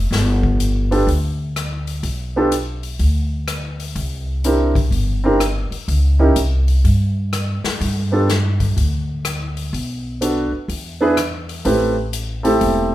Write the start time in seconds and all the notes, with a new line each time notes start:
Already playing: F1
0.11 G1, snare, open hi-hat
0.43 kick
0.60 closed hi-hat
0.91 B3 D4 F4 G4 A4, open hi-hat
1.07 D2, open hi-hat
1.56 cross-stick, closed hi-hat
1.87 open hi-hat
2.03 B1, open hi-hat
2.36 B3 D4 F4 G4 A4
2.52 closed hi-hat
2.83 open hi-hat
2.99 D2, open hi-hat
3.48 cross-stick, closed hi-hat
3.80 open hi-hat
3.95 C2, open hi-hat
4.44 C4 D4 E4 G4 A#4, closed hi-hat
4.75 kick, open hi-hat
4.91 G1, open hi-hat
5.24 C4 D4 E4 G4 A#4
5.40 cross-stick, closed hi-hat
5.71 muted upright bass stroke, open hi-hat
5.88 C#2, open hi-hat
6.19 C#4 D#4 E4 G4 A#4
6.36 C2, closed hi-hat
6.68 open hi-hat
6.84 G2, open hi-hat
7.33 cross-stick, closed hi-hat
7.64 muted upright bass stroke, snare, open hi-hat
7.81 G2, open hi-hat
8.12 B3 D4 F4 G4 A4
8.29 snare, closed hi-hat
8.60 kick, open hi-hat
8.77 D2, open hi-hat
9.25 cross-stick, closed hi-hat
9.57 open hi-hat
9.73 B1, open hi-hat
10.21 B3 D4 F#4 A4 B4, closed hi-hat
10.52 muted upright bass stroke
10.68 E2, open hi-hat
11.01 B3 D4 E4 G#4 B4
11.17 cross-stick, closed hi-hat
11.49 open hi-hat
11.65 A1 A3 C4 E4 G4 B4, open hi-hat
12.13 closed hi-hat
12.43 A3 C4 E4 G4 A4, open hi-hat
12.61 E1, open hi-hat